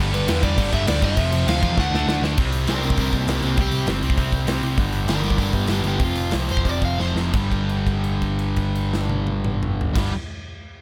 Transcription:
0.00 G1 G2 D3 G3
0.13 G1 G2 D3 G3 B4, crash
0.28 E2 G2 D3 G3, snare, crash
0.42 G2 D3 G3 D5, kick, crash
0.56 G1 G2 D3 G3, kick, crash
0.72 G1 G2 D3 G3 E5, kick, crash
0.86 D2 G2 D3 G3 D5, snare, crash
1.02 F#1 G2 D3 G3 E5, kick, crash
1.16 F1 F2 C3 F3, kick, crash
1.32 F2 C3 F3, crash
1.46 D2 F2 C3 F3 F5, snare, crash
1.62 E2 F2 C3 F3, kick, crash
1.76 D2 D3 A3 D4 F#5, kick, snare
1.91 D2 D3 A3 D4, snare
2.07 D2 D3 A3 D4, snare
2.22 D2 D3 A3 D4, snare
2.38 C2 C3 G3 C4, kick, crash
2.52 open hi-hat
2.67 C2 C3 G3 C4 D4 A#4, snare, open hi-hat
2.83 C3 G3 C4 D4 A#4, open hi-hat
2.90 kick
2.97 C2 C3 G3 C4 D4 A#4, kick, open hi-hat
3.12 C2 A#3 G4, kick, open hi-hat
3.28 C2 C3 G3 A#3 C4 G4, snare, open hi-hat
3.42 C2 C3 G3 A#3 C4 G4, open hi-hat
3.57 C2 C3 G3 C4 G4, kick, open hi-hat
3.72 C2, open hi-hat
3.86 G1 C3 G3 C4, snare, open hi-hat
4.03 C2 C3 G3 C4, open hi-hat
4.10 kick
4.18 C2 C3 G3 C4, kick, open hi-hat
4.32 C2, kick, open hi-hat
4.47 C2 C3 G3 C4, snare, open hi-hat
4.62 C2 C3 G3 C4, open hi-hat
4.78 G1 G2 D3 G3, kick, open hi-hat
4.93 open hi-hat
5.06 G1 G2 D3 G3 D4, snare, open hi-hat
5.10 A#4
5.23 G2 D3 G3 D4 A#4, open hi-hat
5.30 kick
5.37 G1 G2 D3 G3 D4 A#4, kick, open hi-hat
5.53 G1 B3 G4, kick, open hi-hat
5.67 G1 G2 D3 G3 B3 G4, snare, open hi-hat
5.84 G1 G2 D3 G3 B3, open hi-hat
5.88 G4
5.99 F1 F2 C3 F3, kick, open hi-hat
6.04 F4
6.16 F1, open hi-hat
6.31 C2 F2 C3 F3, snare, open hi-hat
6.48 F1 F2 C3 F3 C5, open hi-hat
6.57 kick
6.64 F1 F2 C3 F3, kick, open hi-hat
6.69 D5
6.82 F1 F5, kick, open hi-hat
6.97 F1 F2 C3 F3 C5, snare
7.14 F1 F2 C3 F3, snare
7.31 G1 G2 D3, kick, crash
7.36 G3
7.52 kick, crash
7.69 crash
7.87 kick, crash
8.04 crash
8.22 kick, crash
8.39 crash
8.56 kick, crash
8.75 crash
8.94 snare
9.09 high tom
9.27 high tom
9.44 mid tom
9.63 mid tom
9.81 floor tom
9.94 G1 G2 D3, kick, snare, crash
9.98 G3

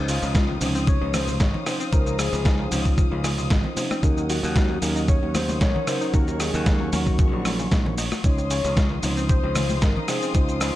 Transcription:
Already playing: C#2 F3 C#4 D#4 C5 F5 D#6
0.08 C#3 F4, open hi-hat, shaker
0.22 C#2 C3, shaker
0.35 C#3, kick, snare, shaker
0.49 D#3
0.60 C#2 C3 F3 C#4 D#4 C5, open hi-hat, shaker
0.75 C4, shaker
0.87 C3 C#5, kick, shaker
1.01 C#2 C#3
1.14 C#3 C5, cross-stick, open hi-hat, high conga, low conga, shaker
1.28 C3, high conga, shaker
1.40 G#1 C#3 C#5, kick, snare, shaker
1.54 D#3, low conga
1.66 C3 F3 C#4 D#4 C5, cross-stick, open hi-hat, shaker
1.80 C4, shaker
1.92 C#2 C3 F3 C#4 D#4 A#4 C5, kick, shaker
2.06 C#3, shaker
2.18 C#3 G#4, cross-stick, open hi-hat, shaker
2.33 C#2 C3, shaker
2.45 C#3, kick, snare, shaker
2.59 D#3
2.71 C#2 C3 F3 C#4 D#4 F4 C5, open hi-hat, shaker
2.85 C4, kick, shaker
2.98 C3, kick, shaker
3.11 C#2 C#3
3.24 C#3, cross-stick, open hi-hat, high conga, shaker
3.38 C3, shaker
3.50 G#1 C#3, kick, snare, shaker
3.64 D#3, low conga
3.76 C3 F3 C#4 D#4 C5, open hi-hat, high conga, shaker
3.91 C4, cross-stick, high conga, shaker
4.02 D#2 C#3 F#3 C#4 D#4 A#4 C#5 F#5, kick, shaker
4.17 D#3, shaker
4.29 D#3 F#4, open hi-hat, shaker
4.43 D#2 C#3, shaker
4.56 D#3, kick, snare, shaker
4.70 F#3
4.81 D#2 C#3 F#3 C#4 D#4 A#4, open hi-hat, shaker
4.96 D#4, shaker
5.08 C#3 C#5, kick, shaker
5.22 D#2 D#3
5.35 D#3 C5, cross-stick, open hi-hat, high conga, low conga, shaker
5.49 C#3, high conga, shaker
5.61 A#1 D#3 C#5, kick, snare, shaker
5.75 F#3, low conga
5.87 C#3 F#3 C#4 D#4 A#4 C5, cross-stick, open hi-hat, shaker
6.01 D#4, shaker
6.13 D#2 C#3 F#3 C#4 D#4 A#4 C#6, kick, shaker
6.28 D#3, shaker
6.40 D#3 G#4, cross-stick, open hi-hat, shaker
6.54 D#2 C#3, shaker
6.66 D#3, kick, snare, shaker
6.80 F#3
6.92 D#2 C#3 F#3 C#4 D#4 F#4 A#4, open hi-hat, high conga, shaker
7.07 D#4, kick, shaker
7.19 C#3, kick, shaker
7.33 A#1 D#3
7.45 C#4, cross-stick, open hi-hat, high conga, shaker
7.59 C#3, shaker
7.71 A#1 C#3, kick, snare, shaker
7.86 C#4, low conga
7.97 D#4, open hi-hat, high conga, shaker
8.12 F#3, cross-stick, high conga, shaker
8.23 C#2 C3 F3 C#4 D#4 C#5 F5 C6 D#6, kick, shaker
8.38 C4, shaker
8.50 C#3 C#5, open hi-hat, shaker
8.64 C#2 C3, shaker
8.77 C#3, kick, snare, shaker
8.91 D#3
9.02 C#2 C3 F3 C#4 D#4 C5, open hi-hat, shaker
9.17 C4, shaker
9.29 C3 C5, kick, shaker
9.43 C#2 C4
9.55 C#3, cross-stick, open hi-hat, high conga, low conga, shaker
9.69 C3, high conga, shaker
9.82 G#1 C#3 A#4, kick, snare, shaker
9.96 D#3, low conga
10.08 C3 F3 C#4 D#4 G#4 C5, cross-stick, open hi-hat, shaker
10.22 C4, shaker
10.34 C#2 C3 F3 C#4 D#4 F4 C5, kick, shaker
10.49 C4, shaker
10.61 C#3, cross-stick, open hi-hat, shaker

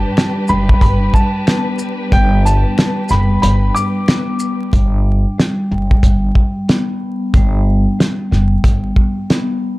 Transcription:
Already playing: G3 D4 G4 B4 A5
0.17 G3, finger snap, snare, closed hi-hat
0.48 F#1 G3 B5, shaker
0.69 kick
0.81 G1 B5, kick, closed hi-hat
1.14 A5, kick, shaker
1.47 B3, finger snap, snare, closed hi-hat
1.79 shaker
2.12 G1 G3 G5, kick, closed hi-hat
2.45 A5, closed hi-hat, shaker
2.78 G3, finger snap, snare, closed hi-hat
3.09 F#1 G3 B5, snare, shaker
3.42 G1 B5, closed hi-hat
3.75 D6, shaker
4.08 B3, finger snap, snare, closed hi-hat
4.40 shaker
4.73 G1 G3, kick, closed hi-hat
5.38 G3, snare, closed hi-hat
5.72 F#1 G3
5.91 kick
6.03 G1, kick, closed hi-hat
6.35 kick
6.69 B3, snare, closed hi-hat
7.34 G1 G3, kick, closed hi-hat
7.99 G3, snare, closed hi-hat
8.31 F#1 G3, snare
8.64 G1, kick, closed hi-hat
8.96 kick
9.30 B3, snare, closed hi-hat

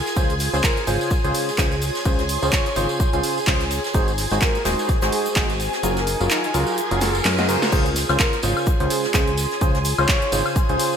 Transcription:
Already playing: F4 G#4 A#4 G#5
0.06 snare, closed hi-hat, tambourine
0.16 C#2 C#3 C#4 F4 G#4 C5, kick, closed hi-hat, tambourine, shaker
0.26 C#5, tambourine
0.30 closed hi-hat
0.39 snare, open hi-hat, shaker
0.54 C#2 C#3 C#4 F4 G#4 C5, closed hi-hat, tambourine
0.63 A#4, kick, snare, clap, closed hi-hat, tambourine, shaker
0.77 closed hi-hat, tambourine
0.87 G#1 C#3 C#4 F4 G#4 C5, open hi-hat, shaker
1.01 tambourine
1.11 kick, closed hi-hat, tambourine, shaker
1.22 C#2 C#3 C#4 F4 G#4 C5 C6, closed hi-hat, tambourine
1.34 G#4, open hi-hat, shaker
1.48 snare, tambourine
1.58 C#2 C#3 C#4 F4 G#4 C5, kick, snare, clap, closed hi-hat, tambourine, shaker
1.72 closed hi-hat, tambourine
1.82 open hi-hat, shaker
1.95 snare, closed hi-hat, tambourine
2.05 C#2 C#3 C#4 F4 G#4 C5, kick, closed hi-hat, tambourine, shaker
2.19 snare, closed hi-hat, tambourine
2.29 open hi-hat, shaker
2.43 C#2 C#3 C#4 F4 G#4 C5 C#5, closed hi-hat, tambourine
2.52 C#5, kick, snare, clap, closed hi-hat, shaker
2.66 closed hi-hat, tambourine
2.76 G#1 C#3 C#4 F4 G#4 C5, open hi-hat, shaker
2.89 tambourine
3.00 kick, closed hi-hat, tambourine, shaker
3.13 C#2 C#3 C#4 F4 G#4 C5, closed hi-hat, tambourine
3.23 open hi-hat, shaker
3.38 tambourine
3.47 C#2 C#3 C#4 F4 G#4 C5, kick, snare, clap, closed hi-hat, open hi-hat, tambourine
3.61 closed hi-hat, tambourine
3.71 open hi-hat, shaker
3.84 snare, closed hi-hat, tambourine
3.94 G#1 G#3 D#4 F#4 G#4 C5, kick, closed hi-hat, tambourine, riser, shaker
4.08 closed hi-hat, tambourine
4.18 snare, open hi-hat, shaker
4.30 G#1 G#3 D#4 F#4 G#4 C5, closed hi-hat, tambourine
4.37 C5
4.42 A#4, kick, snare, clap, closed hi-hat, tambourine, shaker
4.46 G#5
4.55 closed hi-hat, tambourine
4.65 D#1 G#3 D#4 F#4 G#4 C5, snare, open hi-hat, shaker
4.79 tambourine
4.89 kick, closed hi-hat, tambourine, shaker
5.02 G#1 G#3 D#4 F#4 G#4 C5, snare, closed hi-hat, tambourine, shaker
5.12 G#4, open hi-hat
5.26 tambourine, shaker
5.35 G#1 G#3 D#4 F#4 G#4 C5, kick, snare, clap, closed hi-hat, tambourine, shaker
5.50 closed hi-hat, tambourine
5.60 open hi-hat, shaker
5.73 snare, closed hi-hat, tambourine
5.83 F#1 F#3 F4 F#4 G#4 A#4, closed hi-hat, tambourine, shaker
5.97 A#4, snare, closed hi-hat, tambourine
6.07 open hi-hat, shaker
6.20 F#1 F#3 F4 F#4 G#4 A#4, closed hi-hat, tambourine
6.31 D#4, snare, clap, closed hi-hat, tambourine, shaker
6.44 D#4, closed hi-hat, tambourine
6.54 C#2 F#3 F4 F#4 G#4 A#4, open hi-hat, shaker
6.67 closed hi-hat, tambourine
6.78 closed hi-hat, tambourine, shaker
6.91 F#1 F#3 F4 F#4 G#4 A#4, closed hi-hat, tambourine
7.01 F#3 F4 F#4 G#4 A#4, snare, open hi-hat, shaker
7.15 tambourine
7.25 F#2, snare, clap, closed hi-hat, open hi-hat, tambourine
7.38 F#3 F4 F#4 G#4 D#5, snare, closed hi-hat, tambourine
7.49 C#3 F4 F#4 G#4 A#4, open hi-hat, shaker
7.62 snare, closed hi-hat, tambourine
7.72 C#2 C#3 C#4 F4 G#4 C5 G#5, kick, closed hi-hat, crash, tambourine, shaker
7.86 closed hi-hat
7.91 C#5 C6
7.96 snare, open hi-hat, tambourine, shaker
8.09 C#2 C#3 C#4 F4 G#4 C5, closed hi-hat, tambourine, high woodblock
8.19 A#4, kick, snare, clap, closed hi-hat, tambourine, shaker
8.33 closed hi-hat
8.43 G#1 C#3 C#4 F4 G#4 C5, open hi-hat, tambourine, shaker
8.57 tambourine, high woodblock
8.66 kick, closed hi-hat, tambourine, shaker
8.80 C#2 C#3 C#4 F4 G#4 C5, closed hi-hat
8.90 G#4, open hi-hat, tambourine, shaker
9.04 snare, tambourine
9.14 C#2 C#3 C#4 F4 G#4 C5, kick, snare, clap, closed hi-hat, tambourine, shaker
9.28 closed hi-hat
9.37 open hi-hat, tambourine, shaker
9.51 snare, closed hi-hat, tambourine
9.61 C#2 C#3 C#4 F4 G#4 C5, kick, closed hi-hat, tambourine, shaker
9.74 snare, closed hi-hat
9.85 open hi-hat, tambourine, shaker
9.98 C#2 C#3 C#4 F4 G#4 C5 C#5, tambourine, high woodblock
10.09 C#5, kick, snare, clap, closed hi-hat, shaker
10.22 closed hi-hat
10.32 G#1 C#3 C#4 F4 G#4 C5, open hi-hat, tambourine, shaker
10.46 tambourine, high woodblock
10.56 kick, closed hi-hat, tambourine, shaker
10.69 C#2 C#3 C#4 F4 G#4 C5, closed hi-hat
10.79 open hi-hat, tambourine, shaker
10.93 tambourine

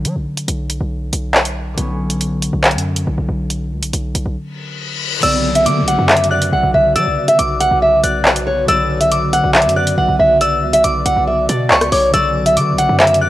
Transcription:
Already playing: D3 F#3 B3 C#4
0.05 F#3, closed hi-hat
0.16 B1
0.37 closed hi-hat
0.48 B1, closed hi-hat
0.70 closed hi-hat
0.81 B1
1.13 B1, closed hi-hat
1.34 clap
1.45 closed hi-hat
1.74 B1 D3 F#3, closed hi-hat
1.78 B3 C#4
2.10 closed hi-hat
2.21 closed hi-hat
2.42 closed hi-hat
2.53 B1
2.64 clap, closed hi-hat
2.71 F#2, closed hi-hat
2.78 closed hi-hat
2.96 closed hi-hat
3.07 B1
3.18 B1
3.29 B1
3.50 closed hi-hat
3.72 C#2
3.83 B1, closed hi-hat
3.93 B1, closed hi-hat
4.15 B1, closed hi-hat
4.26 B1
4.37 reverse cymbal
5.19 B1 D3 F#3 B3 F#4 B4 D5 E6, closed hi-hat, crash, downlifter
5.24 C#3 B3
5.55 E5, closed hi-hat
5.66 D3 D6, closed hi-hat
5.82 B1
5.88 F#5, closed hi-hat
5.99 F#2
6.09 E5, clap, closed hi-hat
6.17 closed hi-hat
6.24 closed hi-hat
6.31 D5 F#6
6.42 closed hi-hat
6.52 B1 F#5
6.63 B1
6.74 B1 E5
6.96 F#3 D5 E6, closed hi-hat
7.06 B1
7.28 E5, closed hi-hat
7.39 B1 D6, closed hi-hat
7.60 F#5, closed hi-hat
7.71 B1
7.82 E5
8.04 B1 D5 F#6, closed hi-hat
8.25 clap
8.36 closed hi-hat
8.47 C#5
8.65 B1 D3 F#3 D5 E6, closed hi-hat
8.69 C#3 B3
9.01 E5, closed hi-hat
9.12 D6, closed hi-hat
9.33 F#5, closed hi-hat
9.44 B1
9.55 E5, clap, closed hi-hat
9.62 F#2, closed hi-hat
9.69 closed hi-hat
9.76 D5 F#6
9.87 closed hi-hat
9.98 B1 F#5
10.09 B1
10.19 B1 E5
10.41 D5 E6, closed hi-hat
10.63 C#2
10.73 B1 E5, closed hi-hat
10.84 B1 D6, closed hi-hat
11.06 B1 F#5, closed hi-hat
11.17 B1
11.27 E5
11.49 B2 D5, closed hi-hat
11.70 C#2 C#6, clap
11.81 cross-stick, closed hi-hat
11.92 B1 C#5 D6, open hi-hat
12.10 B1 D3 F#3 F#4 B4 D5 E6, closed hi-hat
12.14 C#3 B3
12.46 E5, closed hi-hat
12.57 D3 D6, closed hi-hat
12.73 B1
12.78 F#5, closed hi-hat
12.89 F#2
13.00 E5, clap, closed hi-hat
13.07 closed hi-hat
13.14 closed hi-hat
13.21 D5 F#6

